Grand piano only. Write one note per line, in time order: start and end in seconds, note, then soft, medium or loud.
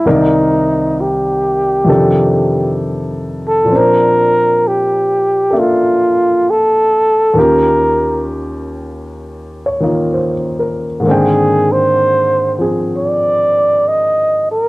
0.05 1.88 C2 soft
0.05 1.84 C3 soft
0.05 1.85 D#3 soft
0.05 1.89 A#4 medium
0.05 1.88 D5 soft
1.85 3.69 F2 soft
1.85 3.69 C3 soft
1.85 3.70 D#3 soft
1.85 3.70 D4 soft
1.89 3.71 G4 soft
1.89 3.71 A4 medium
3.64 7.33 A#2 soft
3.64 7.35 F3 soft
3.70 7.36 C4 soft
3.70 5.50 D4 soft
3.75 7.39 C5 medium
5.51 7.37 A#3 soft
5.51 7.36 D4 soft
5.51 7.35 A4 soft
5.51 7.36 E5 soft
7.34 11.04 D#2 soft
7.34 9.79 D#3 soft
7.34 11.05 C#4 soft
7.38 9.82 F4 soft
7.38 11.06 G4 medium
9.66 10.32 C#5 soft
9.80 11.01 D#3 soft
9.80 11.03 A#3 soft
9.80 11.05 D#4 soft
9.80 11.06 F4 soft
10.13 10.86 C5 soft
10.59 11.24 A#4 soft
11.00 14.69 G#2 soft
11.00 14.69 D#3 soft
11.04 14.69 A#3 soft
11.04 12.58 C4 soft
11.09 14.69 D3 soft
11.09 14.69 G5 medium
12.59 14.69 F3 soft
12.59 14.69 C4 soft
12.59 14.69 G#4 soft